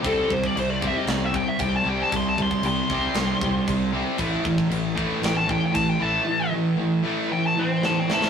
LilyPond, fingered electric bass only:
\new Staff \with { instrumentName = "Fingered electric bass" } { \clef bass \time 4/4 \key a \minor \tempo 4 = 116 c,8 c,8 c,4 c,4 c,8 c,8 | c,4 c,8 c,8 c,8 c,8 c,4 | a,,8 a,,8 a,,4 a,,4 a,,8 a,,8 | r1 | }